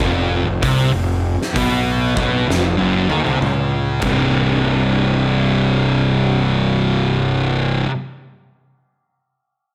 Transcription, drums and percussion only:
0.00 kick loud
0.63 kick loud
0.63 open hi-hat medium
1.42 snare soft
1.56 kick loud
1.56 open hi-hat medium
2.17 kick loud
2.50 snare medium
3.10 high tom medium
3.26 high tom medium
3.42 mid tom medium
4.02 kick loud
4.02 crash medium

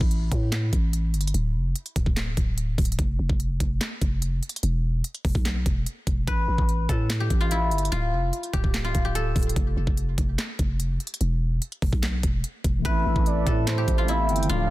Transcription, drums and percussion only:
0.01 kick loud
0.11 closed hi-hat medium
0.32 kick medium
0.32 closed hi-hat medium
0.52 snare loud
0.52 clap loud
0.52 closed hi-hat medium
0.73 kick medium
0.73 closed hi-hat medium
0.93 closed hi-hat medium
1.14 closed hi-hat soft
1.21 closed hi-hat medium
1.27 closed hi-hat medium
1.34 closed hi-hat medium
1.76 closed hi-hat medium
1.86 closed hi-hat soft
1.96 kick medium
1.96 closed hi-hat medium
2.06 kick loud
2.17 snare loud
2.17 clap loud
2.17 closed hi-hat medium
2.37 kick medium
2.37 closed hi-hat medium
2.58 closed hi-hat medium
2.78 kick medium
2.78 closed hi-hat soft
2.78 open hi-hat medium
2.85 closed hi-hat medium
2.92 closed hi-hat medium
2.99 kick loud
2.99 closed hi-hat medium
3.30 kick loud
3.40 closed hi-hat medium
3.60 kick medium
3.60 closed hi-hat medium
3.81 snare loud
3.81 clap loud
3.81 closed hi-hat medium
4.01 kick medium
4.01 closed hi-hat medium
4.22 closed hi-hat medium
4.43 closed hi-hat soft
4.49 closed hi-hat medium
4.56 closed hi-hat medium
4.63 closed hi-hat medium
5.04 closed hi-hat medium
5.14 closed hi-hat soft
5.25 kick medium
5.25 open hi-hat medium
5.35 kick loud
5.45 snare loud
5.45 clap loud
5.45 closed hi-hat medium
5.66 kick medium
5.66 closed hi-hat medium
5.86 closed hi-hat medium
6.07 kick medium
6.07 closed hi-hat medium
6.28 kick loud
6.28 closed hi-hat medium
6.58 kick loud
6.69 closed hi-hat medium
6.89 kick medium
6.89 closed hi-hat medium
7.10 snare loud
7.10 clap loud
7.10 closed hi-hat medium
7.30 kick medium
7.30 closed hi-hat medium
7.51 closed hi-hat medium
7.71 closed hi-hat soft
7.78 closed hi-hat medium
7.85 closed hi-hat medium
7.92 closed hi-hat medium
8.33 closed hi-hat medium
8.43 closed hi-hat soft
8.54 kick medium
8.54 closed hi-hat medium
8.64 kick loud
8.74 snare loud
8.74 clap loud
8.74 closed hi-hat loud
8.95 kick medium
8.95 closed hi-hat medium
9.15 closed hi-hat medium
9.36 kick medium
9.36 closed hi-hat soft
9.36 open hi-hat medium
9.43 closed hi-hat medium
9.49 closed hi-hat medium
9.56 kick loud
9.56 closed hi-hat medium
9.87 kick loud
9.97 closed hi-hat medium
10.18 kick medium
10.18 closed hi-hat medium
10.38 snare loud
10.38 clap loud
10.38 closed hi-hat loud
10.59 kick medium
10.59 closed hi-hat medium
10.80 closed hi-hat medium
11.00 closed hi-hat soft
11.07 closed hi-hat medium
11.14 closed hi-hat medium
11.21 closed hi-hat medium
11.62 closed hi-hat medium
11.72 closed hi-hat soft
11.82 kick medium
11.82 open hi-hat medium
11.93 kick loud
12.03 snare loud
12.03 clap loud
12.03 closed hi-hat medium
12.23 kick medium
12.23 closed hi-hat medium
12.44 closed hi-hat medium
12.64 kick medium
12.64 closed hi-hat medium
12.85 kick loud
12.85 closed hi-hat medium
13.16 kick loud
13.26 closed hi-hat medium
13.47 kick medium
13.47 closed hi-hat medium
13.67 snare loud
13.67 clap loud
13.67 closed hi-hat loud
13.88 kick medium
13.88 closed hi-hat medium
14.08 closed hi-hat medium
14.29 closed hi-hat soft
14.36 closed hi-hat medium
14.43 closed hi-hat medium
14.49 closed hi-hat medium

